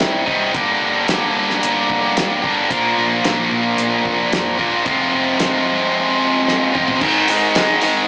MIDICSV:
0, 0, Header, 1, 4, 480
1, 0, Start_track
1, 0, Tempo, 538600
1, 488, Time_signature, 4, 2, 24, 8
1, 7199, End_track
2, 0, Start_track
2, 0, Title_t, "Distorted electric guitar"
2, 0, Program_c, 0, 30
2, 0, Note_on_c, 0, 36, 83
2, 0, Note_on_c, 0, 43, 89
2, 0, Note_on_c, 0, 48, 83
2, 0, Note_on_c, 0, 55, 99
2, 0, Note_on_c, 0, 63, 91
2, 221, Note_off_c, 0, 63, 0
2, 224, Note_off_c, 0, 36, 0
2, 228, Note_off_c, 0, 48, 0
2, 229, Note_off_c, 0, 43, 0
2, 229, Note_off_c, 0, 55, 0
2, 231, Note_on_c, 0, 63, 76
2, 239, Note_on_c, 0, 55, 67
2, 244, Note_on_c, 0, 48, 69
2, 252, Note_on_c, 0, 43, 63
2, 253, Note_on_c, 0, 36, 63
2, 465, Note_off_c, 0, 63, 0
2, 469, Note_off_c, 0, 43, 0
2, 469, Note_off_c, 0, 55, 0
2, 472, Note_off_c, 0, 48, 0
2, 476, Note_off_c, 0, 36, 0
2, 479, Note_on_c, 0, 43, 80
2, 483, Note_on_c, 0, 50, 90
2, 488, Note_on_c, 0, 55, 85
2, 495, Note_on_c, 0, 58, 84
2, 496, Note_on_c, 0, 62, 89
2, 499, Note_on_c, 0, 67, 85
2, 2145, Note_off_c, 0, 67, 0
2, 2151, Note_off_c, 0, 43, 0
2, 2152, Note_off_c, 0, 62, 0
2, 2153, Note_off_c, 0, 50, 0
2, 2156, Note_off_c, 0, 55, 0
2, 2156, Note_on_c, 0, 67, 87
2, 2159, Note_off_c, 0, 58, 0
2, 2163, Note_on_c, 0, 62, 83
2, 2169, Note_on_c, 0, 55, 64
2, 2169, Note_on_c, 0, 58, 74
2, 2175, Note_on_c, 0, 50, 63
2, 2178, Note_on_c, 0, 43, 65
2, 2389, Note_off_c, 0, 67, 0
2, 2392, Note_off_c, 0, 62, 0
2, 2395, Note_off_c, 0, 55, 0
2, 2396, Note_off_c, 0, 58, 0
2, 2398, Note_off_c, 0, 50, 0
2, 2400, Note_off_c, 0, 43, 0
2, 2407, Note_on_c, 0, 53, 82
2, 2408, Note_on_c, 0, 46, 83
2, 2415, Note_on_c, 0, 58, 93
2, 2418, Note_on_c, 0, 62, 91
2, 2422, Note_on_c, 0, 65, 92
2, 2427, Note_on_c, 0, 70, 95
2, 4076, Note_off_c, 0, 46, 0
2, 4076, Note_off_c, 0, 53, 0
2, 4077, Note_off_c, 0, 70, 0
2, 4080, Note_off_c, 0, 58, 0
2, 4082, Note_off_c, 0, 62, 0
2, 4083, Note_off_c, 0, 65, 0
2, 4087, Note_on_c, 0, 70, 76
2, 4095, Note_on_c, 0, 65, 72
2, 4097, Note_on_c, 0, 58, 63
2, 4098, Note_on_c, 0, 62, 69
2, 4104, Note_on_c, 0, 46, 68
2, 4104, Note_on_c, 0, 53, 66
2, 4315, Note_off_c, 0, 70, 0
2, 4319, Note_off_c, 0, 65, 0
2, 4320, Note_off_c, 0, 58, 0
2, 4321, Note_off_c, 0, 53, 0
2, 4321, Note_off_c, 0, 62, 0
2, 4323, Note_off_c, 0, 46, 0
2, 4326, Note_on_c, 0, 41, 83
2, 4326, Note_on_c, 0, 48, 94
2, 4332, Note_on_c, 0, 53, 84
2, 4338, Note_on_c, 0, 56, 83
2, 4339, Note_on_c, 0, 60, 87
2, 4349, Note_on_c, 0, 65, 98
2, 5994, Note_off_c, 0, 41, 0
2, 5994, Note_off_c, 0, 48, 0
2, 5995, Note_off_c, 0, 65, 0
2, 5997, Note_off_c, 0, 53, 0
2, 6000, Note_off_c, 0, 56, 0
2, 6001, Note_off_c, 0, 60, 0
2, 6006, Note_on_c, 0, 65, 70
2, 6013, Note_on_c, 0, 60, 72
2, 6015, Note_on_c, 0, 56, 73
2, 6018, Note_on_c, 0, 53, 66
2, 6021, Note_on_c, 0, 48, 61
2, 6030, Note_on_c, 0, 41, 57
2, 6234, Note_off_c, 0, 65, 0
2, 6238, Note_off_c, 0, 56, 0
2, 6238, Note_off_c, 0, 60, 0
2, 6240, Note_off_c, 0, 53, 0
2, 6241, Note_off_c, 0, 48, 0
2, 6246, Note_off_c, 0, 41, 0
2, 6260, Note_on_c, 0, 51, 111
2, 6263, Note_on_c, 0, 44, 95
2, 6265, Note_on_c, 0, 56, 114
2, 6489, Note_off_c, 0, 44, 0
2, 6495, Note_off_c, 0, 51, 0
2, 6498, Note_off_c, 0, 56, 0
2, 6500, Note_on_c, 0, 44, 76
2, 6505, Note_on_c, 0, 51, 85
2, 6509, Note_on_c, 0, 56, 89
2, 6729, Note_off_c, 0, 44, 0
2, 6734, Note_off_c, 0, 51, 0
2, 6740, Note_off_c, 0, 56, 0
2, 6740, Note_on_c, 0, 44, 85
2, 6745, Note_on_c, 0, 51, 80
2, 6750, Note_on_c, 0, 56, 88
2, 6967, Note_off_c, 0, 44, 0
2, 6973, Note_off_c, 0, 51, 0
2, 6975, Note_off_c, 0, 56, 0
2, 6977, Note_on_c, 0, 44, 86
2, 6984, Note_on_c, 0, 51, 88
2, 6985, Note_on_c, 0, 56, 103
2, 7199, Note_off_c, 0, 44, 0
2, 7199, Note_off_c, 0, 51, 0
2, 7199, Note_off_c, 0, 56, 0
2, 7199, End_track
3, 0, Start_track
3, 0, Title_t, "Fingered electric bass"
3, 0, Program_c, 1, 33
3, 9, Note_on_c, 1, 31, 82
3, 208, Note_off_c, 1, 31, 0
3, 247, Note_on_c, 1, 24, 75
3, 447, Note_off_c, 1, 24, 0
3, 487, Note_on_c, 1, 31, 84
3, 687, Note_off_c, 1, 31, 0
3, 723, Note_on_c, 1, 31, 64
3, 925, Note_off_c, 1, 31, 0
3, 967, Note_on_c, 1, 31, 74
3, 1167, Note_off_c, 1, 31, 0
3, 1209, Note_on_c, 1, 31, 83
3, 1409, Note_off_c, 1, 31, 0
3, 1455, Note_on_c, 1, 31, 79
3, 1652, Note_off_c, 1, 31, 0
3, 1692, Note_on_c, 1, 29, 81
3, 1891, Note_off_c, 1, 29, 0
3, 1933, Note_on_c, 1, 31, 83
3, 2131, Note_off_c, 1, 31, 0
3, 2171, Note_on_c, 1, 31, 82
3, 2370, Note_off_c, 1, 31, 0
3, 2411, Note_on_c, 1, 34, 87
3, 2611, Note_off_c, 1, 34, 0
3, 2654, Note_on_c, 1, 34, 63
3, 2852, Note_off_c, 1, 34, 0
3, 2893, Note_on_c, 1, 34, 76
3, 3092, Note_off_c, 1, 34, 0
3, 3135, Note_on_c, 1, 46, 80
3, 3333, Note_off_c, 1, 46, 0
3, 3371, Note_on_c, 1, 46, 78
3, 3571, Note_off_c, 1, 46, 0
3, 3612, Note_on_c, 1, 29, 74
3, 3811, Note_off_c, 1, 29, 0
3, 3851, Note_on_c, 1, 41, 79
3, 4051, Note_off_c, 1, 41, 0
3, 4094, Note_on_c, 1, 28, 75
3, 4293, Note_off_c, 1, 28, 0
3, 4333, Note_on_c, 1, 29, 86
3, 4532, Note_off_c, 1, 29, 0
3, 4575, Note_on_c, 1, 29, 68
3, 4774, Note_off_c, 1, 29, 0
3, 4821, Note_on_c, 1, 29, 79
3, 5017, Note_off_c, 1, 29, 0
3, 5059, Note_on_c, 1, 31, 73
3, 5255, Note_off_c, 1, 31, 0
3, 6254, Note_on_c, 1, 32, 97
3, 6451, Note_off_c, 1, 32, 0
3, 6491, Note_on_c, 1, 32, 70
3, 6689, Note_off_c, 1, 32, 0
3, 6735, Note_on_c, 1, 32, 86
3, 7130, Note_off_c, 1, 32, 0
3, 7199, End_track
4, 0, Start_track
4, 0, Title_t, "Drums"
4, 0, Note_on_c, 9, 42, 56
4, 5, Note_on_c, 9, 38, 102
4, 87, Note_off_c, 9, 42, 0
4, 94, Note_off_c, 9, 38, 0
4, 245, Note_on_c, 9, 36, 80
4, 334, Note_off_c, 9, 36, 0
4, 485, Note_on_c, 9, 42, 55
4, 487, Note_on_c, 9, 36, 105
4, 574, Note_off_c, 9, 42, 0
4, 576, Note_off_c, 9, 36, 0
4, 964, Note_on_c, 9, 42, 53
4, 971, Note_on_c, 9, 38, 99
4, 1053, Note_off_c, 9, 42, 0
4, 1060, Note_off_c, 9, 38, 0
4, 1337, Note_on_c, 9, 38, 33
4, 1426, Note_off_c, 9, 38, 0
4, 1452, Note_on_c, 9, 42, 56
4, 1541, Note_off_c, 9, 42, 0
4, 1691, Note_on_c, 9, 36, 81
4, 1780, Note_off_c, 9, 36, 0
4, 1933, Note_on_c, 9, 42, 64
4, 1940, Note_on_c, 9, 38, 109
4, 2022, Note_off_c, 9, 42, 0
4, 2029, Note_off_c, 9, 38, 0
4, 2172, Note_on_c, 9, 36, 83
4, 2261, Note_off_c, 9, 36, 0
4, 2411, Note_on_c, 9, 42, 57
4, 2412, Note_on_c, 9, 36, 87
4, 2500, Note_off_c, 9, 42, 0
4, 2501, Note_off_c, 9, 36, 0
4, 2892, Note_on_c, 9, 42, 55
4, 2899, Note_on_c, 9, 38, 96
4, 2981, Note_off_c, 9, 42, 0
4, 2988, Note_off_c, 9, 38, 0
4, 3370, Note_on_c, 9, 42, 49
4, 3459, Note_off_c, 9, 42, 0
4, 3612, Note_on_c, 9, 36, 82
4, 3702, Note_off_c, 9, 36, 0
4, 3855, Note_on_c, 9, 42, 56
4, 3862, Note_on_c, 9, 38, 105
4, 3944, Note_off_c, 9, 42, 0
4, 3951, Note_off_c, 9, 38, 0
4, 4093, Note_on_c, 9, 36, 82
4, 4182, Note_off_c, 9, 36, 0
4, 4330, Note_on_c, 9, 42, 54
4, 4332, Note_on_c, 9, 36, 100
4, 4419, Note_off_c, 9, 42, 0
4, 4422, Note_off_c, 9, 36, 0
4, 4808, Note_on_c, 9, 42, 55
4, 4816, Note_on_c, 9, 38, 93
4, 4898, Note_off_c, 9, 42, 0
4, 4905, Note_off_c, 9, 38, 0
4, 5777, Note_on_c, 9, 38, 54
4, 5867, Note_off_c, 9, 38, 0
4, 6016, Note_on_c, 9, 45, 81
4, 6105, Note_off_c, 9, 45, 0
4, 6132, Note_on_c, 9, 43, 77
4, 6222, Note_off_c, 9, 43, 0
4, 6249, Note_on_c, 9, 49, 105
4, 6251, Note_on_c, 9, 36, 109
4, 6338, Note_off_c, 9, 49, 0
4, 6340, Note_off_c, 9, 36, 0
4, 6488, Note_on_c, 9, 46, 64
4, 6577, Note_off_c, 9, 46, 0
4, 6730, Note_on_c, 9, 46, 76
4, 6737, Note_on_c, 9, 38, 104
4, 6819, Note_off_c, 9, 46, 0
4, 6826, Note_off_c, 9, 38, 0
4, 6963, Note_on_c, 9, 46, 55
4, 7053, Note_off_c, 9, 46, 0
4, 7199, End_track
0, 0, End_of_file